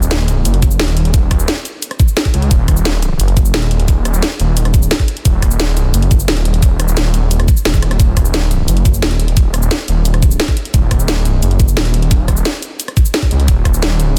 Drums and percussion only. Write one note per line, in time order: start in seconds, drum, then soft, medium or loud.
0.02 cabasa medium
0.11 snare loud
0.11 closed hi-hat loud
0.11 cabasa soft
0.28 closed hi-hat medium
0.28 cabasa soft
0.45 closed hi-hat medium
0.45 cabasa soft
0.54 closed hi-hat soft
0.62 kick loud
0.62 closed hi-hat medium
0.62 cabasa soft
0.71 cabasa medium
0.80 snare loud
0.80 closed hi-hat medium
0.88 closed hi-hat soft
0.97 closed hi-hat medium
1.05 closed hi-hat soft
1.14 kick loud
1.14 closed hi-hat medium
1.14 cabasa soft
1.31 kick medium
1.31 cross-stick soft
1.31 closed hi-hat medium
1.31 cabasa soft
1.40 cabasa medium
1.48 snare loud
1.48 closed hi-hat medium
1.48 cabasa medium
1.65 closed hi-hat medium
1.65 cabasa soft
1.82 closed hi-hat medium
1.82 cabasa soft
1.91 cross-stick soft
1.91 closed hi-hat soft
2.00 kick loud
2.00 closed hi-hat medium
2.00 cabasa soft
2.08 cabasa medium
2.17 snare loud
2.17 closed hi-hat medium
2.17 cabasa soft
2.25 kick medium
2.25 closed hi-hat soft
2.34 closed hi-hat medium
2.42 closed hi-hat soft
2.51 kick loud
2.51 closed hi-hat medium
2.51 cabasa medium
2.68 kick medium
2.68 cross-stick soft
2.68 closed hi-hat medium
2.68 cabasa soft
2.77 cabasa medium
2.85 snare loud
2.85 closed hi-hat medium
2.85 cabasa soft
3.02 closed hi-hat medium
3.02 cabasa soft
3.20 closed hi-hat medium
3.20 cabasa soft
3.28 closed hi-hat soft
3.37 kick loud
3.37 closed hi-hat medium
3.37 cabasa medium
3.45 cabasa medium
3.54 snare loud
3.54 closed hi-hat medium
3.62 closed hi-hat soft
3.71 closed hi-hat medium
3.80 closed hi-hat soft
3.88 kick loud
3.88 closed hi-hat medium
3.88 cabasa medium
4.05 cross-stick soft
4.05 closed hi-hat medium
4.05 cabasa soft
4.14 cabasa medium
4.22 snare loud
4.22 closed hi-hat medium
4.22 cabasa medium
4.40 closed hi-hat medium
4.40 cabasa soft
4.57 closed hi-hat medium
4.57 cabasa medium
4.65 cross-stick soft
4.65 closed hi-hat soft
4.74 kick loud
4.74 closed hi-hat medium
4.74 cabasa medium
4.82 cabasa medium
4.91 snare loud
4.91 closed hi-hat medium
4.91 cabasa soft
5.00 kick medium
5.00 closed hi-hat soft
5.08 closed hi-hat medium
5.17 closed hi-hat soft
5.25 kick loud
5.25 closed hi-hat medium
5.25 cabasa medium
5.42 kick medium
5.42 cross-stick soft
5.42 closed hi-hat medium
5.42 cabasa soft
5.51 cabasa medium
5.60 snare loud
5.60 closed hi-hat loud
5.60 cabasa medium
5.77 closed hi-hat medium
5.77 cabasa soft
5.94 closed hi-hat loud
5.94 cabasa medium
6.02 closed hi-hat soft
6.11 kick loud
6.11 closed hi-hat medium
6.11 cabasa medium
6.20 cabasa medium
6.28 snare loud
6.28 closed hi-hat loud
6.37 closed hi-hat soft
6.45 closed hi-hat medium
6.54 closed hi-hat soft
6.62 kick loud
6.62 closed hi-hat loud
6.62 cabasa medium
6.80 cross-stick soft
6.80 closed hi-hat medium
6.80 cabasa soft
6.88 cabasa medium
6.97 snare loud
6.97 closed hi-hat loud
6.97 cabasa medium
7.14 closed hi-hat medium
7.14 cabasa soft
7.31 closed hi-hat loud
7.31 cabasa medium
7.40 cross-stick soft
7.40 closed hi-hat soft
7.48 kick loud
7.48 closed hi-hat medium
7.48 cabasa medium
7.57 cabasa medium
7.65 snare loud
7.65 closed hi-hat loud
7.65 cabasa soft
7.74 kick medium
7.74 closed hi-hat soft
7.74 cabasa soft
7.82 cross-stick soft
7.82 closed hi-hat medium
7.91 cross-stick soft
7.91 closed hi-hat soft
8.00 kick loud
8.00 closed hi-hat loud
8.00 cabasa medium
8.17 kick medium
8.17 cross-stick soft
8.17 closed hi-hat medium
8.17 cabasa soft
8.25 cabasa medium
8.34 snare loud
8.34 closed hi-hat loud
8.34 cabasa medium
8.51 closed hi-hat medium
8.51 cabasa soft
8.68 closed hi-hat loud
8.68 cabasa soft
8.77 closed hi-hat soft
8.85 kick loud
8.85 closed hi-hat medium
8.85 cabasa medium
8.94 cabasa medium
9.02 snare loud
9.02 closed hi-hat loud
9.11 closed hi-hat soft
9.20 closed hi-hat medium
9.28 closed hi-hat soft
9.37 kick loud
9.37 closed hi-hat medium
9.37 cabasa soft
9.54 cross-stick soft
9.54 closed hi-hat medium
9.54 cabasa soft
9.62 cabasa medium
9.71 snare loud
9.71 closed hi-hat loud
9.71 cabasa medium
9.88 closed hi-hat medium
9.88 cabasa soft
10.05 closed hi-hat loud
10.05 cabasa soft
10.14 cross-stick soft
10.14 closed hi-hat soft
10.22 kick loud
10.22 closed hi-hat medium
10.22 cabasa soft
10.31 cabasa medium
10.40 snare loud
10.40 closed hi-hat medium
10.48 kick medium
10.48 closed hi-hat soft
10.57 closed hi-hat medium
10.65 closed hi-hat soft
10.74 kick loud
10.74 closed hi-hat medium
10.74 cabasa soft
10.91 kick medium
10.91 cross-stick soft
10.91 closed hi-hat medium
10.91 cabasa soft
11.00 cabasa medium
11.08 snare loud
11.08 closed hi-hat medium
11.08 cabasa medium
11.25 closed hi-hat medium
11.25 cabasa soft
11.43 closed hi-hat medium
11.43 cabasa soft
11.51 closed hi-hat soft
11.60 kick loud
11.60 closed hi-hat medium
11.60 cabasa soft
11.68 cabasa medium
11.77 snare loud
11.77 closed hi-hat medium
11.85 closed hi-hat soft
11.94 closed hi-hat medium
12.02 closed hi-hat soft
12.11 kick loud
12.11 closed hi-hat medium
12.11 cabasa soft
12.28 kick medium
12.28 cross-stick soft
12.28 closed hi-hat medium
12.28 cabasa soft
12.37 cabasa medium
12.45 snare loud
12.45 closed hi-hat medium
12.45 cabasa medium
12.62 closed hi-hat medium
12.62 cabasa soft
12.80 closed hi-hat medium
12.80 cabasa soft
12.88 cross-stick soft
12.88 closed hi-hat soft
12.97 kick loud
12.97 closed hi-hat medium
12.97 cabasa soft
13.05 cabasa medium
13.14 snare loud
13.14 closed hi-hat medium
13.14 cabasa soft
13.22 kick medium
13.22 closed hi-hat soft
13.31 closed hi-hat medium
13.40 closed hi-hat soft
13.48 kick loud
13.48 closed hi-hat medium
13.48 cabasa soft
13.65 kick medium
13.65 cross-stick soft
13.65 closed hi-hat medium
13.65 cabasa soft
13.74 cabasa medium
13.82 snare loud
13.82 closed hi-hat medium
13.82 cabasa medium
14.00 closed hi-hat medium
14.00 cabasa soft